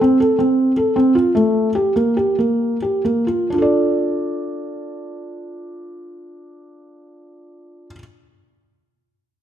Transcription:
0.01 0.17 C4 medium
0.20 0.36 A4 medium
0.39 0.71 C4 soft
0.77 0.93 A4 soft
0.96 1.12 C4 medium
1.15 1.32 F4 medium
1.35 1.69 A3 medium
1.75 1.92 G4 medium
1.96 2.13 A#3 medium
2.17 2.35 G4 soft
2.39 2.76 A#3 soft
2.82 3.01 G4 soft
3.05 3.24 A#3 soft
3.27 3.47 F4 soft
3.50 7.87 D4 soft
3.50 7.91 F4 soft
3.58 7.95 A4 soft
3.58 7.99 D5 soft

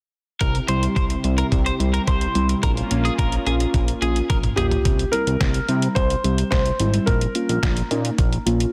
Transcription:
0.41 0.60 C2 loud
0.41 2.61 C3 medium
0.41 2.61 C4 medium
0.41 2.61 E4 medium
0.41 2.61 G4 medium
0.41 0.56 A#4 medium
0.41 kick loud
0.41 closed hi-hat medium
0.55 closed hi-hat medium
0.68 0.88 C2 medium
0.68 0.89 G3 medium
0.68 0.89 C4 medium
0.68 0.89 E4 medium
0.68 0.84 C5 medium
0.68 closed hi-hat medium
0.83 closed hi-hat soft
0.96 1.16 C2 loud
0.96 1.04 C5 medium
0.96 kick loud
0.96 closed hi-hat medium
1.10 closed hi-hat medium
1.24 1.44 C2 medium
1.24 1.45 G3 medium
1.24 1.45 C4 medium
1.24 1.45 E4 medium
1.24 closed hi-hat medium
1.38 1.46 A#4 medium
1.38 closed hi-hat medium
1.52 1.71 C2 loud
1.52 kick loud
1.52 closed hi-hat medium
1.66 1.74 C5 medium
1.66 closed hi-hat soft
1.80 1.99 C2 medium
1.80 2.00 G3 medium
1.80 2.00 C4 medium
1.80 2.00 E4 medium
1.80 closed hi-hat medium
1.94 2.01 A#4 medium
1.94 closed hi-hat soft
2.07 2.27 C2 loud
2.07 2.47 C5 medium
2.07 kick loud
2.07 closed hi-hat medium
2.21 closed hi-hat soft
2.35 2.55 C2 medium
2.35 2.56 G3 medium
2.35 2.56 C4 medium
2.35 2.56 E4 medium
2.35 closed hi-hat medium
2.49 closed hi-hat medium
2.63 2.83 A#1 loud
2.63 4.83 A#3 medium
2.63 4.83 C#4 medium
2.63 4.83 F4 medium
2.63 2.71 A#4 medium
2.63 kick loud
2.63 closed hi-hat medium
2.77 closed hi-hat medium
2.91 3.10 A#1 medium
2.91 3.11 A#3 medium
2.91 3.11 C#4 medium
2.91 3.11 F4 medium
2.91 closed hi-hat medium
3.05 3.13 G#4 medium
3.05 closed hi-hat soft
3.18 3.38 A#1 loud
3.18 3.34 A#4 medium
3.18 kick loud
3.18 closed hi-hat medium
3.32 closed hi-hat medium
3.46 3.66 A#1 medium
3.46 3.67 A#3 medium
3.46 3.67 C#4 medium
3.46 3.67 F4 medium
3.46 3.54 G#4 medium
3.46 closed hi-hat medium
3.60 closed hi-hat medium
3.74 3.94 A#1 loud
3.74 kick loud
3.74 closed hi-hat medium
3.88 closed hi-hat medium
4.02 4.21 A#1 loud
4.02 4.22 A#3 medium
4.02 4.22 C#4 medium
4.02 4.22 F4 medium
4.02 4.18 G#4 medium
4.02 closed hi-hat medium
4.16 closed hi-hat soft
4.30 4.49 A#1 loud
4.30 4.38 A#4 medium
4.30 kick loud
4.30 closed hi-hat medium
4.30 high tom soft
4.43 closed hi-hat soft
4.43 mid tom medium
4.56 4.77 A#1 medium
4.56 4.78 A#3 medium
4.56 4.78 C#4 medium
4.56 4.78 F4 medium
4.56 5.14 G4 medium
4.56 4.65 G#4 medium
4.56 closed hi-hat medium
4.56 mid tom medium
4.71 closed hi-hat medium
4.71 floor tom medium
4.85 5.05 C2 loud
4.85 kick loud
4.85 closed hi-hat medium
4.99 closed hi-hat medium
5.12 5.34 G3 medium
5.12 5.34 C4 medium
5.12 5.34 E4 medium
5.12 5.98 A#4 medium
5.12 closed hi-hat medium
5.27 5.37 C2 medium
5.27 closed hi-hat soft
5.41 5.60 C2 loud
5.41 kick loud
5.41 snare loud
5.41 closed hi-hat medium
5.54 closed hi-hat medium
5.69 5.88 C3 medium
5.69 5.89 G3 medium
5.69 5.89 C4 medium
5.69 5.89 E4 medium
5.69 closed hi-hat medium
5.82 closed hi-hat medium
5.95 6.16 C2 loud
5.95 6.49 C5 loud
5.95 kick loud
5.95 closed hi-hat medium
6.10 closed hi-hat soft
6.24 6.44 C2 medium
6.24 6.45 G3 medium
6.24 6.45 C4 medium
6.24 6.45 G4 medium
6.24 closed hi-hat medium
6.38 closed hi-hat soft
6.51 6.71 C2 loud
6.51 7.09 C5 loud
6.51 kick loud
6.51 snare loud
6.51 closed hi-hat medium
6.66 closed hi-hat soft
6.80 6.99 G#1 medium
6.80 6.90 G3 medium
6.80 6.90 C4 medium
6.80 6.90 E4 medium
6.80 closed hi-hat medium
6.94 7.08 G3 medium
6.94 7.08 C4 medium
6.94 7.08 E4 medium
6.94 closed hi-hat medium
7.06 7.27 A#1 loud
7.06 8.14 A#4 medium
7.06 kick loud
7.06 closed hi-hat medium
7.21 closed hi-hat medium
7.35 7.56 A#3 medium
7.35 7.56 C#4 medium
7.35 7.56 F4 medium
7.35 closed hi-hat medium
7.49 7.59 A#1 loud
7.49 closed hi-hat soft
7.63 7.82 A#1 loud
7.63 kick loud
7.63 snare loud
7.63 closed hi-hat medium
7.77 closed hi-hat medium
7.91 8.10 A#2 loud
7.91 8.11 A#3 medium
7.91 8.11 C#4 medium
7.91 8.11 D#4 medium
7.91 closed hi-hat medium
8.05 closed hi-hat medium
8.18 8.38 A#1 loud
8.18 kick loud
8.18 closed hi-hat medium
8.33 closed hi-hat soft
8.46 8.66 A#1 loud
8.46 8.67 A#3 medium
8.46 8.67 C#4 medium
8.46 8.67 F4 medium
8.46 closed hi-hat medium
8.60 closed hi-hat medium

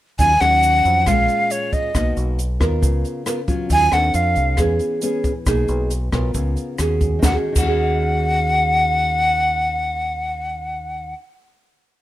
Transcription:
0.19 0.39 D#2 medium
0.19 1.05 D#3 soft
0.19 0.32 F#3 medium
0.19 0.32 C#4 medium
0.19 0.32 F4 medium
0.19 0.42 G#5 loud
0.19 kick medium
0.19 closed hi-hat soft
0.19 shaker medium
0.41 0.82 D#2 medium
0.41 1.03 F#3 medium
0.41 1.03 C#4 medium
0.41 1.09 F#5 loud
0.41 cross-stick medium
0.41 closed hi-hat soft
0.41 shaker soft
0.63 closed hi-hat soft
0.63 shaker medium
0.85 1.05 F2 medium
0.85 closed hi-hat soft
0.85 shaker soft
1.06 1.27 A#1 medium
1.06 1.92 A#2 soft
1.06 1.91 G#3 medium
1.06 1.91 C#4 soft
1.06 1.91 F4 medium
1.06 1.53 F5 medium
1.06 kick medium
1.06 cross-stick medium
1.06 closed hi-hat soft
1.06 shaker medium
1.28 closed hi-hat soft
1.28 shaker soft
1.50 1.75 C#5 medium
1.50 closed hi-hat soft
1.50 shaker medium
1.73 2.17 D#5 medium
1.73 kick medium
1.73 closed hi-hat soft
1.73 shaker soft
1.94 2.15 B1 medium
1.94 2.80 B2 soft
1.94 2.39 A#3 medium
1.94 2.38 D#4 soft
1.94 2.39 F#4 medium
1.94 kick medium
1.94 cross-stick medium
1.94 closed hi-hat soft
1.94 shaker medium
2.17 2.58 B1 medium
2.17 closed hi-hat soft
2.17 shaker soft
2.39 closed hi-hat soft
2.39 shaker medium
2.60 2.81 D#2 medium
2.60 3.23 B3 medium
2.60 3.23 F4 medium
2.60 3.23 A#4 medium
2.60 kick medium
2.60 cross-stick medium
2.60 closed hi-hat soft
2.60 shaker soft
2.81 3.03 C#2 medium
2.81 3.68 C#3 soft
2.81 kick medium
2.81 closed hi-hat soft
2.81 shaker medium
3.05 closed hi-hat soft
3.05 shaker soft
3.26 3.39 B3 medium
3.26 3.39 F4 medium
3.26 3.39 A#4 medium
3.26 cross-stick medium
3.26 closed hi-hat soft
3.26 shaker medium
3.48 3.89 F#3 medium
3.48 3.89 C#4 medium
3.48 3.89 F4 medium
3.48 kick medium
3.48 closed hi-hat soft
3.48 shaker soft
3.70 3.91 D#2 medium
3.70 4.12 D#3 medium
3.70 3.95 G#5 loud
3.70 kick medium
3.70 closed hi-hat soft
3.70 shaker medium
3.92 4.13 D#2 medium
3.92 4.55 C4 medium
3.92 4.55 D4 medium
3.92 4.56 A4 medium
3.92 4.17 F#5 medium
3.92 cross-stick medium
3.92 closed hi-hat soft
3.92 shaker soft
4.14 4.35 F2 loud
4.14 4.59 F5 medium
4.14 closed hi-hat soft
4.14 shaker medium
4.36 4.57 C2 medium
4.36 closed hi-hat soft
4.36 shaker soft
4.57 4.79 E2 medium
4.57 5.45 E3 medium
4.57 4.99 B3 soft
4.57 5.00 C#4 medium
4.57 5.00 G#4 medium
4.57 kick medium
4.57 cross-stick soft
4.57 closed hi-hat soft
4.57 shaker medium
4.79 closed hi-hat soft
4.79 shaker soft
5.02 5.31 B3 soft
5.02 5.31 C#4 medium
5.02 5.31 G#4 medium
5.02 closed hi-hat soft
5.02 shaker medium
5.24 kick medium
5.24 closed hi-hat soft
5.24 shaker soft
5.46 5.67 B1 medium
5.46 6.33 B2 soft
5.46 5.90 A#3 soft
5.46 5.91 D#4 medium
5.46 5.91 G#4 medium
5.46 kick medium
5.46 cross-stick medium
5.46 closed hi-hat soft
5.46 shaker medium
5.68 6.10 B1 medium
5.68 closed hi-hat soft
5.68 shaker soft
5.90 closed hi-hat soft
5.90 shaker medium
6.12 6.33 B1 medium
6.12 6.75 B3 medium
6.12 6.75 F4 medium
6.12 6.75 A#4 medium
6.12 kick medium
6.12 cross-stick medium
6.12 closed hi-hat soft
6.12 shaker soft
6.34 6.55 C#2 medium
6.34 6.77 C#3 soft
6.34 kick medium
6.34 closed hi-hat soft
6.34 shaker medium
6.57 closed hi-hat soft
6.57 shaker soft
6.78 7.20 D#2 medium
6.78 7.21 C#4 medium
6.78 7.22 F#4 soft
6.78 7.22 G#4 medium
6.78 cross-stick medium
6.78 closed hi-hat soft
6.78 shaker medium
7.01 kick medium
7.01 closed hi-hat soft
7.01 shaker soft
7.19 7.52 D#3 medium
7.19 kick medium
7.19 snare medium
7.23 7.35 D#2 medium
7.23 7.55 C#4 medium
7.23 7.36 F#5 medium
7.23 shaker medium
7.29 7.62 F#4 medium
7.34 7.66 G#4 medium
7.52 11.13 D#2 medium
7.52 11.13 D#3 medium
7.52 kick medium
7.52 crash medium
7.52 shaker medium
7.58 11.19 C#4 medium
7.58 11.14 F#5 medium
7.63 11.24 F#4 medium
7.67 11.28 G#4 medium

